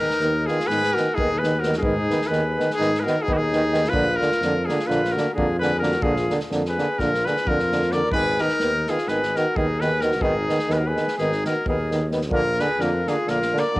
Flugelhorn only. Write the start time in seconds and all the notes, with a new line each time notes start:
0.00 D#4
0.48 F4
0.67 G#4
0.94 F#4
1.15 D#4
1.39 G#4
1.59 F#4
1.77 D#4 F#4
2.27 G#4
2.77 D#4
3.01 F#4 G#4
3.24 D#4
3.35 D#4
3.40 D#4
3.88 F4
4.17 F4
4.66 F4
4.86 F4
5.14 F#4
5.36 F4
5.62 G#4
5.84 F#4
6.03 F4
6.68 G#4
7.00 F4
7.28 G#4
7.47 F4
7.94 A#4
8.14 G#4
8.41 D#4
8.89 F4
9.09 G#4
9.38 F#4
9.59 D#4
9.84 G#4
10.03 F#4
10.24 D#4
10.73 G#4
10.79 F#4
10.88 G#4
11.21 D#4
11.48 F#4
11.70 D#4
12.32 F4
12.62 G#4
12.83 F4
13.09 F4
13.31 F4
13.59 A#4